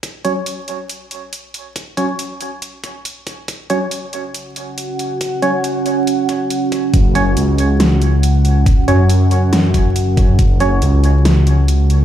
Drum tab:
HH |xxxxxxxx|xxxxxxxx|xxxxxxxx|xxxxxxxx|
SD |--------|--------|--------|--------|
BD |o-------|o----o-o|o-------|o----o-o|

HH |xxxxxxxx|xxxxxxxx|xxxxxxxx|
SD |----o---|----o---|----o---|
BD |o-------|o----o-o|o-------|